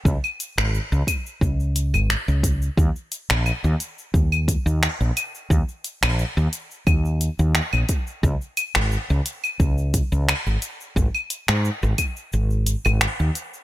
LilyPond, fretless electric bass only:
\new Staff \with { instrumentName = "Fretless electric bass" } { \clef bass \time 4/4 \key aes \mixolydian \tempo 4 = 88 des,16 r8 aes,,16 r16 des,16 r8 des,8. aes,,16 r16 des,8 r16 | ees,16 r8 bes,,16 r16 ees,16 r8 ees,8 r16 ees,16 r16 bes,,16 r8 | ees,16 r8 bes,,16 r16 ees,16 r8 ees,8 r16 ees,16 r16 bes,,16 r8 | des,16 r8 aes,,16 r16 des,16 r8 des,8 r16 des,16 r16 aes,,16 r8 |
aes,,16 r8 aes,16 r16 aes,,16 r8 aes,,8 r16 aes,,16 r16 ees,16 r8 | }